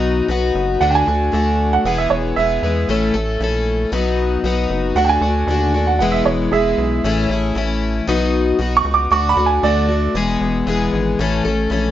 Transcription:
Already playing: B1 B2 F#3 B3 D#4 F#4
0.28 B1 F#3 B3 D#4 F#4
0.55 F#1
0.81 D2 D3 A3 D4 F#4 F#5
0.90 G5
0.95 G#5
1.06 D2 A3 D4 F#4
1.32 D2 D3 A3 D4 F#4
1.73 F#5
1.85 E1 E2 B2 E3 G#3 B3 G#4 F#5
1.98 E5
2.10 E1 C#5
2.36 E1 E3 G#3 B3 G#4 E5
2.63 E2 E3 G#3 B3 G#4
2.89 A1 A2 E3 A3 C#4 A4
3.14 A1 A3 C#4 A4
3.40 A#1 E3 A3 C#4 A4
3.92 B1 B2 F#3 B3 D#4 F#4
4.44 B1 F#3 B3 D#4 F#4
4.70 F#1
4.95 D2 D3 A3 D4 F#4 F#5
5.05 G5
5.09 G#5
5.21 D2 D4 F#4
5.25 A3
5.47 D#2 D3 A3 D4 F#4
5.74 A3 D4 F#4
5.87 F#5
5.99 E1 E2 B2 E3 G#3 B3 E4 F#5
6.12 E5
6.25 E1 C#5
6.51 E1 E3 G#3 B3 G#4 E5
6.55 E4
6.78 B1
7.04 A1 A2 E3 A3 C#4 E4
7.29 A1 C#4 E4
7.33 A3
7.55 A1 E3 A3 C#4 E4
8.07 B1 B2 F#3 B3 D#4 F#4
8.59 B1 F#3 B3 D#4 F#4
8.77 C#6
8.85 C#2
8.94 D6
9.11 D2 D3 A3 D4 F#4 C#6
9.29 B5
9.36 D2 A3 D4 F#4
9.46 G#5
9.63 D2 D3 A3 D4 F#4 D5
9.89 A3 D4 F#4
10.14 E1 E2 B2 E3 G#3 B3 G#4
10.41 E1
10.66 E1 E3 G#3 B3 G#4
10.93 G#1
11.19 A1 A2 E3 A3 C#4 A4
11.45 A1 A3 C#4 A4
11.70 A#1 E3 A3 C#4 A4

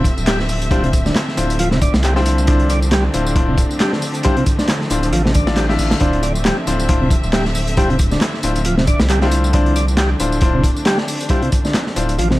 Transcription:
Already playing: D1 D3 F3 A3 C4 E5
0.04 kick, closed hi-hat, tambourine
0.18 D1, tambourine
0.27 G3, snare, clap, closed hi-hat, tambourine
0.40 snare
0.49 open hi-hat, tambourine
0.62 closed hi-hat, tambourine
0.71 G3 D4 E4 F4 C5, kick, closed hi-hat, tambourine
0.84 C3, closed hi-hat
0.93 kick, closed hi-hat, tambourine
1.06 D3, snare, tambourine
1.15 snare, clap, closed hi-hat, tambourine
1.28 snare
1.37 D1 D4 E4 F4 C5, closed hi-hat, tambourine
1.50 closed hi-hat, tambourine
1.59 F3, closed hi-hat, tambourine
1.71 C3, snare
1.82 D4, kick, closed hi-hat, tambourine
1.94 C2, snare, tambourine
2.03 G3, clap, closed hi-hat, tambourine
2.16 G3 D4 E4 F4 C5, snare
2.26 closed hi-hat, tambourine
2.38 tambourine
2.47 D3 D4 E4 F4 C5, kick, closed hi-hat, tambourine
2.59 closed hi-hat
2.69 D4, closed hi-hat, tambourine
2.82 tambourine
2.91 G3, snare, clap, closed hi-hat, tambourine
3.14 D1 D4 E4 F4 C5, closed hi-hat, tambourine
3.26 tambourine
3.36 D4 E4 F4 C5, kick, closed hi-hat, tambourine
3.49 C3
3.57 kick, closed hi-hat, tambourine
3.71 tambourine
3.80 G3, snare, clap, closed hi-hat, tambourine
3.93 snare
4.02 open hi-hat, tambourine
4.14 closed hi-hat, tambourine
4.23 G3 D4 E4 F4 C5, kick, closed hi-hat, tambourine
4.37 C3, closed hi-hat
4.46 kick, closed hi-hat, tambourine
4.58 D3, snare, tambourine
4.68 snare, clap, closed hi-hat, tambourine
4.81 snare
4.90 D1 D4 E4 F4 C5, closed hi-hat, tambourine
5.03 closed hi-hat, tambourine
5.12 A1 F3, closed hi-hat, tambourine, reverse cymbal
5.25 C3, snare
5.34 D4, kick, closed hi-hat, tambourine
5.47 D4 E4 F4 D5, snare, tambourine
5.56 G3, snare, clap, closed hi-hat, tambourine
5.69 G3 D4 E4 F4 E5, snare
5.79 A1, open hi-hat, tambourine
5.91 snare, closed hi-hat, tambourine
6.00 D1 D3 D4 E4 F4 C5 E5, kick, closed hi-hat, tambourine
6.13 closed hi-hat
6.23 D4, closed hi-hat, tambourine
6.35 tambourine
6.45 G3, snare, clap, closed hi-hat, tambourine
6.67 D1 D4 E4 F4 C5, closed hi-hat, tambourine
6.80 tambourine
6.89 D4 E4 F4 C5, kick, closed hi-hat, tambourine
7.01 C3
7.10 kick, closed hi-hat, tambourine
7.23 D1, tambourine
7.33 G3, snare, clap, closed hi-hat, tambourine
7.45 snare
7.55 open hi-hat, tambourine
7.67 closed hi-hat, tambourine
7.77 G3 D4 E4 F4 C5, kick, closed hi-hat, tambourine
7.90 C3, closed hi-hat
7.99 kick, closed hi-hat, tambourine
8.11 D3, snare, tambourine
8.21 snare, clap, closed hi-hat, tambourine
8.34 snare
8.43 D1 D4 E4 F4 C5, closed hi-hat, tambourine
8.55 closed hi-hat, tambourine
8.65 F3, closed hi-hat, tambourine
8.78 C3, snare
8.87 D4, kick, closed hi-hat, tambourine
9.00 C2, snare, tambourine
9.09 G3, clap, closed hi-hat, tambourine
9.21 G3 D4 E4 F4 C5, snare
9.31 closed hi-hat, tambourine
9.44 tambourine
9.53 D3 D4 E4 F4 C5, kick, closed hi-hat, tambourine
9.66 closed hi-hat
9.76 D4, closed hi-hat, tambourine
9.88 tambourine
9.97 G3, snare, clap, closed hi-hat, tambourine
10.20 D1 D4 E4 F4 C5, closed hi-hat, tambourine
10.32 tambourine
10.41 D4 E4 F4 C5, kick, closed hi-hat, tambourine
10.55 C3
10.64 kick, closed hi-hat, tambourine
10.76 tambourine
10.85 G3, snare, clap, closed hi-hat, tambourine
10.98 snare
11.08 open hi-hat, tambourine
11.20 closed hi-hat, tambourine
11.29 G3 D4 E4 F4 C5, kick, closed hi-hat, tambourine
11.42 C3, closed hi-hat
11.52 kick, closed hi-hat, tambourine
11.65 D3, snare, tambourine
11.74 snare, clap, closed hi-hat, tambourine
11.87 snare
11.96 D1 D4 E4 F4 C5, closed hi-hat, tambourine
12.09 closed hi-hat, tambourine
12.18 A1 F3, closed hi-hat, tambourine
12.31 C3, snare

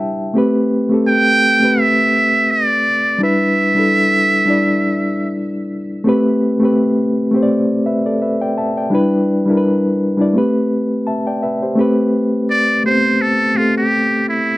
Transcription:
Already playing: G3 D4 E4 G4 B4 G5 A5
0.00 E5
0.34 A3 C4 G4
0.38 B4
0.89 A3 C4 G4
0.94 A4
1.08 G5
1.60 A3 C4 G4
1.64 B4
1.80 E5
2.51 D5
3.18 G3 D4 E4
3.23 B4 E5
3.75 G3 D4 E4
3.79 A4
4.45 G3 D4 E4
4.50 D5
6.04 A3 C4 G4
6.09 B4
6.60 A3 C4 G4
6.65 B4
7.31 A3 C4 G4
7.36 C5
7.43 D5
7.86 B4 E5
8.06 A4 D5
8.22 B4 E5
8.41 D5 G5
8.58 E5 A5
8.77 D5 G5
8.90 G3 D4 E4
8.95 B4
9.46 G3 D4 E4
9.51 A#4
9.57 B4
10.17 G3 D4 E4
10.21 D5
10.34 A3 C4 G4
10.38 B4
11.07 E5 A5
11.27 D5 G5
11.43 B4 E5
11.63 G4 C5
11.76 A3 C4 G4
11.81 B4
12.50 D5
12.84 A3 B3 G4 C5
12.88 C4 C5
13.21 A4
13.55 A3 C4 F4 G4
13.59 A4
13.77 G4
14.29 E4

